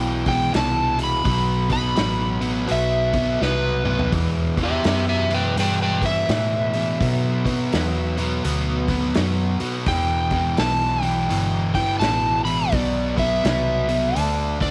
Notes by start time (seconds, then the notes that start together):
Already playing: B1 E2 B2 E3 B3 G5
0.26 E2 B2 E3 G5, kick, open hi-hat
0.53 C2 E2 B2 E3 A5, snare, open hi-hat
0.98 E2 B2 E3, open hi-hat
1.04 B5
1.24 B1 B2 F#3 B3, kick, open hi-hat
1.69 B2 F#3 B3 B5, kick, open hi-hat
1.95 A1 B2 F#3 B3, snare, open hi-hat
2.41 B2 F#3 B3, open hi-hat
2.67 B1 B2 F#3 B3, open hi-hat
2.71 E5
3.13 B2 F#3 B3, kick, open hi-hat
3.41 C2 B2 F#3 B3 B4, snare
3.85 B2 F#3 B3, mid tom
3.99 floor tom
4.12 E2 B2 E3, kick, open hi-hat
4.57 E2 B2 E3, kick, open hi-hat
4.63 G4 E5
4.84 E2 F#2 B2 E3 G4 E5, snare, open hi-hat
5.09 G4 E5
5.30 E2 B2 E3, open hi-hat
5.34 B4 G5
5.56 E2 G2 B2 E3 B4, open hi-hat
5.60 G5
5.82 B4 G5
6.02 E2 B2 E3 E5, kick, open hi-hat
6.28 E2 A2 B2 E3, snare, open hi-hat
6.73 E2 B2 E3, open hi-hat
7.00 B2 F#3 B3, kick, open hi-hat
7.45 B2 F#3 B3, kick, open hi-hat
7.73 E2 B2 F#3 B3, snare, open hi-hat
8.18 B2 F#3 B3, open hi-hat
8.44 D2 B2 F#3 B3, open hi-hat
8.88 B2 F#3 B3, kick, open hi-hat
9.15 F#2 B2 F#3 B3, snare, open hi-hat
9.60 B2 F#3 B3, muted fingered electric bass stroke, open hi-hat
9.86 E2 B2 E3 G5, kick, open hi-hat
10.31 E2 B2 E3, kick, open hi-hat
10.57 B1 E2 B2 E3 A5, snare, open hi-hat
11.02 E2 B2 E3 G5, open hi-hat
11.29 G1 E2 B2 E3, open hi-hat
11.74 E2 B2 E3 G5, kick, open hi-hat
12.00 A1 E2 B2 E3 A5, snare, open hi-hat
12.45 E2 B2 E3 B5, open hi-hat
12.72 B1 B2 F#3 B3 D5, kick, open hi-hat
13.16 B2 F#3 B3 E5, kick, open hi-hat
13.44 C2 B2 F#3 B3, snare, open hi-hat
13.89 B2 F#3 B3, open hi-hat
14.15 D2 D3 A3 D4 A5, open hi-hat
14.60 D3 A3 D4 D5, kick, open hi-hat